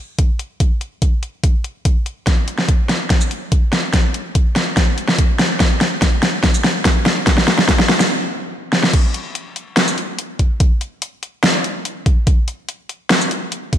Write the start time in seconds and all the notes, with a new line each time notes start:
0.19 kick, closed hi-hat
0.39 closed hi-hat
0.60 kick, closed hi-hat
0.81 closed hi-hat
1.02 kick, closed hi-hat
1.23 closed hi-hat
1.44 kick, closed hi-hat
1.64 closed hi-hat
1.85 kick, closed hi-hat
2.06 closed hi-hat
2.27 kick, snare, closed hi-hat
2.48 closed hi-hat
2.58 snare
2.69 kick, closed hi-hat
2.89 snare, closed hi-hat
3.10 kick, snare, closed hi-hat
3.21 shaker
3.31 closed hi-hat
3.52 kick, closed hi-hat
3.73 snare, closed hi-hat
3.93 kick, snare, closed hi-hat
4.14 closed hi-hat
4.35 kick, closed hi-hat
4.56 snare, closed hi-hat
4.77 kick, snare, closed hi-hat
4.98 closed hi-hat
5.08 snare
5.19 kick, closed hi-hat
5.39 snare, closed hi-hat
5.60 kick, snare, closed hi-hat
5.81 snare, closed hi-hat
6.02 kick, snare, closed hi-hat
6.23 snare, closed hi-hat
6.44 kick, snare, closed hi-hat
6.54 shaker
6.64 snare, closed hi-hat
6.85 kick, snare, closed hi-hat
7.06 snare, closed hi-hat
7.27 kick, snare, closed hi-hat
7.38 snare
7.48 snare, closed hi-hat
7.58 snare
7.69 kick, snare, closed hi-hat
7.79 snare
7.89 snare, closed hi-hat
8.00 snare, shaker
8.73 snare
8.83 snare
8.94 kick, closed hi-hat, crash
9.14 closed hi-hat
9.35 closed hi-hat
9.56 closed hi-hat
9.77 snare, closed hi-hat
9.88 shaker
9.98 closed hi-hat
10.19 closed hi-hat
10.39 kick, closed hi-hat
10.60 kick, closed hi-hat
10.81 closed hi-hat
11.02 closed hi-hat
11.23 closed hi-hat
11.44 snare, closed hi-hat
11.64 closed hi-hat
11.85 closed hi-hat
12.06 kick, closed hi-hat
12.27 kick, closed hi-hat
12.48 closed hi-hat
12.69 closed hi-hat
12.89 closed hi-hat
13.10 snare, closed hi-hat
13.21 shaker
13.31 closed hi-hat
13.52 closed hi-hat
13.73 kick, closed hi-hat